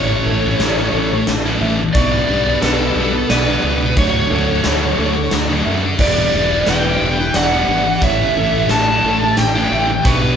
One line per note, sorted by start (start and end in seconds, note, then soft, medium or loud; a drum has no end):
0.00 0.21 A1 loud
0.00 0.60 A2 medium
0.00 0.27 E3 loud
0.00 0.28 A3 loud
0.00 0.29 C#4 loud
0.00 1.93 C#4 medium
0.00 0.30 E4 loud
0.00 1.92 G4 medium
0.00 0.27 C#5 loud
0.00 1.24 C#5 loud
0.00 1.92 E5 medium
0.00 1.93 A5 medium
0.26 0.54 A1 medium
0.26 0.61 E3 medium
0.26 0.47 A3 medium
0.26 0.92 A4 medium
0.31 0.44 C#4 medium
0.31 0.43 E4 medium
0.44 0.62 A3 medium
0.44 0.63 C#4 medium
0.44 0.64 E4 medium
0.59 0.88 A1 medium
0.59 1.28 A2 loud
0.59 0.93 E3 loud
0.59 0.94 A3 loud
0.59 snare medium
0.59 closed hi-hat medium
0.64 0.95 C#4 loud
0.64 0.97 E4 loud
0.93 1.22 A1 medium
0.93 1.12 E3 medium
0.93 1.12 A3 medium
0.93 1.11 C#4 medium
0.93 1.61 A4 medium
0.98 1.12 E4 loud
1.13 muted distorted electric guitar stroke medium
1.27 1.56 A1 medium
1.27 snare loud
1.27 closed hi-hat medium
1.46 1.62 A3 medium
1.46 1.63 C#4 medium
1.46 1.64 E4 medium
1.61 1.89 A1 loud
1.61 1.79 E3 medium
1.61 1.78 A3 medium
1.61 1.78 C#4 medium
1.61 1.95 E5 medium
1.65 1.78 E4 loud
1.79 muted distorted electric guitar stroke soft
1.94 2.23 B1 loud
1.94 2.27 B2 loud
1.94 2.29 G3 loud
1.94 5.96 D4 medium
1.94 3.96 G4 medium
1.94 2.58 D5 loud
1.94 5.96 F#5 medium
1.94 3.96 B5 loud
1.94 2.63 C#6 loud
1.94 kick loud
1.94 closed hi-hat medium
1.98 2.30 B3 loud
1.98 2.31 D4 loud
2.28 2.57 B1 medium
2.28 2.60 B2 medium
2.28 2.48 G3 medium
2.28 2.46 B3 medium
2.28 2.45 D4 loud
2.45 2.63 B3 medium
2.45 2.64 D4 medium
2.49 2.62 G3 medium
2.61 2.91 B1 loud
2.61 2.95 B2 loud
2.61 2.96 G3 loud
2.61 2.98 B3 loud
2.61 3.00 D4 loud
2.61 3.29 A4 medium
2.61 3.30 B4 medium
2.61 snare medium
2.61 closed hi-hat medium
2.95 3.24 B1 loud
2.95 3.47 B2 medium
2.95 3.13 G3 medium
2.95 3.13 B3 medium
3.00 3.13 D4 medium
3.14 muted distorted electric guitar stroke medium
3.30 3.58 B1 medium
3.30 3.98 B4 loud
3.30 3.98 D5 medium
3.30 snare loud
3.30 closed hi-hat medium
3.46 3.63 G3 medium
3.46 3.65 B3 medium
3.46 3.67 D4 medium
3.63 3.92 C#2 loud
3.63 3.95 B2 medium
3.63 3.80 G3 medium
3.63 3.80 B3 medium
3.67 3.81 D4 medium
3.81 muted distorted electric guitar stroke soft
3.97 4.25 D2 loud
3.97 4.30 D3 loud
3.97 4.31 F#3 loud
3.97 4.33 A3 loud
3.97 4.35 D4 loud
3.97 5.98 A4 medium
3.97 4.31 C#5 loud
3.97 5.29 C#5 loud
3.97 5.98 C#6 medium
3.97 kick loud
3.97 closed hi-hat medium
4.30 4.59 D2 medium
4.30 4.63 D3 medium
4.30 4.51 F#3 medium
4.30 4.49 A3 medium
4.30 4.97 A4 medium
4.35 4.48 D4 loud
4.48 4.64 F#3 medium
4.48 4.66 A3 medium
4.48 4.67 D4 medium
4.64 4.93 D2 medium
4.64 4.97 D3 medium
4.64 4.98 F#3 loud
4.64 5.00 A3 loud
4.64 5.00 D4 loud
4.64 snare medium
4.64 closed hi-hat medium
4.98 5.27 D2 loud
4.98 5.49 D3 medium
4.98 5.16 F#3 medium
4.98 5.16 A3 medium
4.98 5.15 D4 medium
4.98 5.66 A4 medium
5.16 muted distorted electric guitar stroke medium
5.31 5.61 D2 medium
5.31 snare loud
5.31 closed hi-hat medium
5.49 5.67 F#3 medium
5.49 5.68 A3 medium
5.49 5.69 D4 medium
5.65 5.94 F#2 medium
5.65 5.98 D3 medium
5.65 5.84 F#3 medium
5.65 5.84 A3 medium
5.65 6.00 E5 medium
5.70 5.84 D4 medium
5.85 muted distorted electric guitar stroke soft
5.99 6.28 E1 loud
5.99 6.33 E3 loud
5.99 6.35 G3 loud
5.99 6.35 B3 loud
5.99 8.00 D4 medium
5.99 10.36 G4 medium
5.99 6.67 D5 loud
5.99 6.65 D5 loud
5.99 10.01 E5 medium
5.99 8.01 B5 medium
5.99 kick loud
5.99 crash loud
6.03 6.37 E4 loud
6.33 6.62 E1 medium
6.33 6.66 E3 medium
6.33 6.53 G3 medium
6.33 6.51 B3 medium
6.37 6.50 E4 medium
6.50 6.68 G3 medium
6.50 6.68 B3 medium
6.50 6.70 E4 medium
6.66 6.96 E1 medium
6.66 7.00 E3 loud
6.66 7.02 G3 loud
6.66 7.02 B3 loud
6.66 7.35 B4 medium
6.66 7.32 G5 medium
6.66 snare medium
6.66 closed hi-hat medium
6.71 7.03 E4 loud
7.01 7.30 E1 loud
7.01 7.52 E3 medium
7.01 7.19 G3 medium
7.01 7.18 B3 medium
7.01 7.18 E4 medium
7.19 muted distorted electric guitar stroke medium
7.34 7.63 E1 medium
7.34 8.03 D5 medium
7.34 8.03 F#5 loud
7.34 snare loud
7.34 closed hi-hat medium
7.52 7.69 G3 medium
7.52 7.69 B3 medium
7.52 7.70 E4 medium
7.68 7.97 G#1 medium
7.68 8.00 E3 medium
7.68 7.87 G3 medium
7.68 7.86 B3 medium
7.68 7.85 E4 medium
7.87 muted distorted electric guitar stroke medium
8.01 8.30 A1 loud
8.01 8.68 A2 loud
8.01 8.34 E3 loud
8.01 8.36 A3 loud
8.01 10.02 C#4 medium
8.01 8.36 C#4 loud
8.01 8.37 C#5 loud
8.01 8.67 E5 loud
8.01 10.03 A5 medium
8.01 kick loud
8.01 closed hi-hat medium
8.05 8.37 E4 loud
8.35 8.64 A1 medium
8.35 8.69 E3 medium
8.35 8.54 A3 medium
8.35 8.53 C#4 medium
8.35 8.51 E4 medium
8.35 9.03 A4 medium
8.52 8.70 A3 medium
8.52 8.71 C#4 medium
8.52 8.71 E4 medium
8.69 8.98 A1 medium
8.69 9.37 A2 loud
8.69 9.02 E3 loud
8.69 9.04 A3 loud
8.69 9.05 C#4 loud
8.69 9.06 E4 loud
8.69 9.38 A5 loud
8.69 snare medium
8.69 closed hi-hat medium
9.03 9.32 A1 loud
9.03 9.21 E3 medium
9.03 9.21 A3 medium
9.03 9.21 C#4 medium
9.03 9.21 E4 medium
9.03 9.72 A4 medium
9.22 muted distorted electric guitar stroke medium
9.37 9.66 A1 medium
9.37 10.08 G5 loud
9.37 snare loud
9.37 closed hi-hat medium
9.55 9.71 A3 medium
9.55 9.72 C#4 medium
9.55 9.73 E4 medium
9.71 10.00 A1 loud
9.71 9.88 E3 medium
9.71 9.88 A3 medium
9.71 9.88 C#4 medium
9.71 9.88 E4 loud
9.71 10.06 E5 medium
9.89 muted distorted electric guitar stroke medium
10.04 10.33 B1 loud
10.04 10.36 B2 loud
10.04 10.36 G3 loud
10.04 10.36 B3 loud
10.04 10.36 D4 medium
10.04 10.36 D4 loud
10.04 10.36 B4 loud
10.04 10.36 F#5 medium
10.04 10.36 B5 medium
10.04 10.36 C#6 loud
10.04 kick loud
10.04 closed hi-hat medium